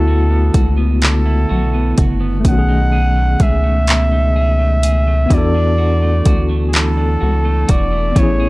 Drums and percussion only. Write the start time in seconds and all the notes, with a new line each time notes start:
0.54 kick, closed hi-hat
1.02 clap, closed hi-hat
1.98 kick, closed hi-hat
2.45 kick, closed hi-hat
3.40 kick, closed hi-hat
3.87 clap, closed hi-hat
4.83 closed hi-hat
5.30 kick, closed hi-hat
6.25 kick, closed hi-hat
6.73 clap, closed hi-hat
7.69 kick, closed hi-hat
8.16 kick, closed hi-hat